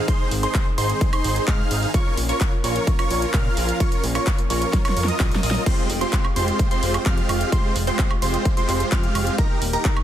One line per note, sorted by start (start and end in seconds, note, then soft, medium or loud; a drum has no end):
0.00 1.91 D#3 medium
0.00 1.91 G#3 medium
0.00 1.90 C4 loud
0.08 0.31 D#4 medium
0.08 0.31 G#4 medium
0.08 0.31 C5 medium
0.08 0.31 C6 loud
0.08 kick loud
0.08 closed hi-hat medium
0.31 0.46 G#1 loud
0.31 open hi-hat loud
0.43 0.66 D#4 medium
0.43 0.66 G#4 medium
0.43 0.66 C5 loud
0.43 0.66 C6 loud
0.43 closed hi-hat medium
0.55 kick loud
0.55 clap loud
0.55 closed hi-hat medium
0.78 0.93 G#1 medium
0.78 1.10 D#4 medium
0.78 1.10 G#4 medium
0.78 1.10 C5 medium
0.78 1.10 C6 medium
0.78 open hi-hat loud
0.90 closed hi-hat medium
1.01 kick loud
1.01 closed hi-hat medium
1.13 1.45 D#4 medium
1.13 1.45 G#4 medium
1.13 1.45 C5 loud
1.13 1.45 C6 loud
1.13 closed hi-hat soft
1.13 high woodblock medium
1.24 1.40 G#1 medium
1.24 open hi-hat loud
1.36 closed hi-hat soft
1.48 1.63 G#2 medium
1.48 1.91 D#4 loud
1.48 1.91 G#4 medium
1.48 1.91 F5 loud
1.48 1.91 F6 loud
1.48 kick loud
1.48 clap loud
1.48 closed hi-hat medium
1.71 1.86 G#1 loud
1.71 open hi-hat loud
1.83 open hi-hat medium
1.94 5.63 F3 medium
1.94 5.63 A#3 medium
1.94 5.63 C#4 loud
1.94 2.17 F4 medium
1.94 2.17 A#4 medium
1.94 2.17 C#5 medium
1.94 2.17 C#6 loud
1.94 kick loud
1.94 closed hi-hat medium
2.17 2.32 A#1 loud
2.17 open hi-hat loud
2.29 2.52 F4 medium
2.29 2.52 A#4 medium
2.29 2.52 C#5 loud
2.29 2.52 C#6 loud
2.29 closed hi-hat medium
2.41 kick loud
2.41 clap loud
2.41 closed hi-hat medium
2.64 2.79 A#1 medium
2.64 2.96 F4 medium
2.64 2.96 A#4 medium
2.64 2.96 C#5 medium
2.64 2.96 C#6 medium
2.64 open hi-hat loud
2.76 closed hi-hat medium
2.87 kick loud
2.87 closed hi-hat medium
2.99 3.31 F4 loud
2.99 3.31 A#4 medium
2.99 3.31 C#5 loud
2.99 3.31 C#6 loud
2.99 closed hi-hat soft
2.99 high woodblock medium
3.10 3.26 A#1 medium
3.10 open hi-hat loud
3.22 closed hi-hat medium
3.34 3.49 A#2 medium
3.34 3.77 A#4 medium
3.34 3.78 F6 loud
3.34 kick loud
3.34 clap loud
3.34 closed hi-hat medium
3.57 3.72 A#1 loud
3.57 open hi-hat loud
3.69 closed hi-hat medium
3.80 4.03 F4 medium
3.80 4.03 A#4 medium
3.80 4.03 C#5 medium
3.80 4.03 C#6 loud
3.80 kick loud
3.80 closed hi-hat medium
3.92 closed hi-hat soft
4.04 4.19 A#1 loud
4.04 open hi-hat loud
4.15 4.38 F4 medium
4.15 4.38 A#4 medium
4.15 4.38 C#5 loud
4.15 4.38 C#6 loud
4.15 closed hi-hat medium
4.15 high woodblock medium
4.27 kick loud
4.27 clap loud
4.27 closed hi-hat medium
4.39 closed hi-hat soft
4.50 4.65 A#1 medium
4.50 4.82 F4 medium
4.50 4.82 A#4 medium
4.50 4.82 C#5 medium
4.50 4.82 C#6 medium
4.50 open hi-hat loud
4.62 closed hi-hat medium
4.73 kick loud
4.73 snare medium
4.73 closed hi-hat medium
4.85 5.06 F4 loud
4.85 5.06 A#4 medium
4.85 5.06 C#5 loud
4.85 5.06 C#6 loud
4.85 snare medium
4.85 closed hi-hat soft
4.85 high woodblock medium
4.97 5.12 F2 medium
4.97 open hi-hat loud
5.04 5.40 F4 medium
5.04 5.40 A#4 medium
5.04 5.40 D#5 medium
5.04 5.40 D#6 medium
5.04 snare medium
5.04 closed hi-hat medium
5.20 5.35 A#1 medium
5.20 kick loud
5.20 snare medium
5.20 clap loud
5.20 closed hi-hat medium
5.32 snare loud
5.32 closed hi-hat soft
5.43 5.58 A#1 medium
5.43 5.64 F4 medium
5.43 5.64 A#4 medium
5.43 5.64 D#5 medium
5.43 5.64 D#6 loud
5.43 open hi-hat loud
5.51 snare loud
5.51 open hi-hat medium
5.66 9.35 G#3 medium
5.66 5.89 C4 medium
5.66 5.89 F4 medium
5.66 9.35 F4 medium
5.66 5.89 G4 medium
5.66 7.51 G4 loud
5.66 5.89 C5 medium
5.66 5.89 C6 medium
5.66 kick loud
5.66 closed hi-hat medium
5.66 crash loud
5.90 6.05 F1 loud
5.90 open hi-hat loud
6.01 6.24 G#3 medium
6.01 6.24 C4 medium
6.01 6.24 F4 medium
6.01 6.24 G4 medium
6.01 6.24 C5 loud
6.01 6.24 C6 loud
6.01 closed hi-hat medium
6.13 kick loud
6.13 clap loud
6.13 closed hi-hat medium
6.25 high woodblock medium
6.36 6.51 F1 medium
6.36 6.68 G#3 medium
6.36 6.68 C4 medium
6.36 6.68 F4 medium
6.36 6.68 G4 medium
6.36 6.68 C5 medium
6.36 6.68 C6 medium
6.36 open hi-hat loud
6.48 closed hi-hat medium
6.59 kick loud
6.59 closed hi-hat medium
6.71 7.03 G#3 loud
6.71 7.03 C4 medium
6.71 7.03 F4 medium
6.71 7.03 G4 medium
6.71 7.03 C5 loud
6.71 7.03 C6 loud
6.71 closed hi-hat soft
6.83 6.98 F1 medium
6.83 open hi-hat loud
6.94 closed hi-hat medium
6.94 high woodblock medium
7.06 7.21 F2 medium
7.06 7.50 G#3 loud
7.06 7.50 C4 medium
7.06 7.50 F4 medium
7.06 7.50 G4 medium
7.06 7.50 F5 loud
7.06 7.50 F6 loud
7.06 kick loud
7.06 clap loud
7.06 closed hi-hat medium
7.18 closed hi-hat soft
7.29 7.44 F1 loud
7.29 open hi-hat loud
7.29 high woodblock medium
7.41 closed hi-hat medium
7.52 7.75 G#3 medium
7.52 7.75 C4 medium
7.52 7.75 F4 medium
7.52 7.75 C6 loud
7.52 kick loud
7.52 closed hi-hat medium
7.76 7.91 F1 loud
7.76 open hi-hat loud
7.87 8.10 G#3 medium
7.87 8.10 C4 medium
7.87 8.10 F4 medium
7.87 8.10 G4 medium
7.87 8.10 C5 loud
7.87 8.10 C6 loud
7.87 closed hi-hat medium
7.99 kick loud
7.99 clap loud
7.99 closed hi-hat medium
8.11 high woodblock medium
8.22 8.37 F1 medium
8.22 8.54 G#3 medium
8.22 8.54 C4 medium
8.22 8.54 F4 medium
8.22 8.54 G4 medium
8.22 8.54 C5 medium
8.22 8.54 C6 medium
8.22 open hi-hat loud
8.34 closed hi-hat medium
8.45 kick loud
8.45 closed hi-hat medium
8.57 8.89 G#3 loud
8.57 8.89 C4 medium
8.57 8.89 F4 medium
8.57 8.89 G4 medium
8.57 8.89 C5 loud
8.57 8.89 C6 loud
8.57 closed hi-hat soft
8.69 8.84 F1 medium
8.69 clap soft
8.69 open hi-hat loud
8.80 closed hi-hat medium
8.92 9.07 F2 medium
8.92 9.36 G#3 loud
8.92 9.36 C4 medium
8.92 9.36 F4 medium
8.92 9.36 G4 medium
8.92 9.36 F5 loud
8.92 9.36 F6 loud
8.92 kick loud
8.92 clap loud
8.92 closed hi-hat medium
9.04 closed hi-hat soft
9.15 9.30 F1 loud
9.15 open hi-hat loud
9.15 high woodblock medium
9.27 closed hi-hat medium
9.38 10.03 D#3 medium
9.38 10.03 A#3 medium
9.38 9.61 D#4 medium
9.38 9.61 G4 medium
9.38 10.03 G4 loud
9.38 9.61 A#4 medium
9.38 9.61 A#5 loud
9.38 kick loud
9.38 closed hi-hat medium
9.62 9.77 D#1 loud
9.62 open hi-hat loud
9.73 9.96 D#4 medium
9.73 9.96 G4 medium
9.73 9.96 A#4 loud
9.73 9.96 A#5 loud
9.73 closed hi-hat medium
9.85 kick loud
9.85 clap loud
9.85 closed hi-hat medium
9.97 high woodblock medium